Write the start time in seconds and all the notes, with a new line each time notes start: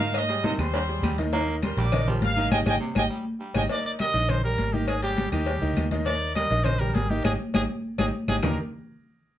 Already playing: G#2 F5
0.00 D#3 D#4 D#5, high conga
0.14 D#5 D#6, cowbell, high conga, claves
0.29 G3 G4 G#4, cowbell, high conga
0.44 C3 D#3 D#4 D#5 D#6, cowbell, high conga
0.58 D#2 G3 G4 G#4 C5 C6, cowbell, claves
0.74 G3, cowbell, high conga
0.89 G3 G4 G#4, high conga
1.03 D#2 G3, cowbell, high conga, claves
1.18 D#3 D#4 D#5, cowbell, high conga
1.33 D#3 A#3 D#4 D#5, cowbell, high conga
1.48 high conga
1.62 G3 G4 A#4 C5 C6, cowbell, high conga, claves
1.77 A#1 G3 D5 D6, cowbell, high conga
1.92 D#3 D#4 D#5, cowbell, high conga, low conga, claves
2.07 F3 G3 G4 A#4, high conga, low conga
2.22 G#1 F5, cowbell, high conga
2.36 D#3 D#4 D#5, high conga
2.51 G#1 D#4 G4 G#4 D#5 G5 G#5, cowbell, high conga, claves
2.66 G#1 D#4 G4 G#4 D#5 G5 G#5, cowbell, high conga, claves
2.80 C3
2.95 G#1 D#4 G4 G#4 D#5 G5 G#5, cowbell, high conga, claves
3.10 G3
3.40 G3
3.54 G#1 D#4 G4 G#4 D#5 G5 G#5, cowbell, high conga, claves
3.69 D#3 D#4 D5 D#5, cowbell, high conga
3.85 D5, high conga
3.99 G3 G4 A#4 D#5, cowbell, high conga, claves
4.14 A#1 D#3 D#4 D#5, cowbell, high conga
4.29 C5, cowbell, high conga, low conga, claves
4.44 G3 G4 A#4, high conga
4.58 G#1, cowbell, high conga
4.73 D#3 D#4 G4 D#5, high conga
4.88 G#4, cowbell, high conga, claves
5.02 G3 G4 G#4, cowbell, high conga
5.17 cowbell, high conga
5.32 D#2 D#3 D#4 G4 D#5, cowbell, claves
5.46 G3 G4 G#4, cowbell, high conga
5.61 D2 D#3 D#4 D#5, high conga
5.77 D#2, cowbell, high conga, claves
5.91 D#3 D#4 D#5, cowbell, high conga
6.06 D#3 D#4 D5 D#5, cowbell, high conga
6.21 high conga
6.35 G3 G4 A#4 D#5, cowbell, high conga, claves
6.50 A#1 D#3 D#4 D#5, cowbell, high conga
6.64 C5, cowbell, high conga, low conga, claves
6.79 G3 G4 A#4, high conga, low conga
6.94 G#1 G#4, cowbell, high conga
7.09 D#3 D#4 G4 D#5, high conga
7.24 G#1 D#4 G4 G#4, cowbell, high conga, claves
7.54 G#1 D#4 G4 G#4, cowbell, high conga, claves
7.98 G#1 D#4 G4 G#4, cowbell, high conga, claves
8.28 G#1 D#4 G4 G#4, cowbell, high conga, claves
8.43 D#2 D#3 A#3 D4 D#4 G4 A#4, low bongo, low conga, claves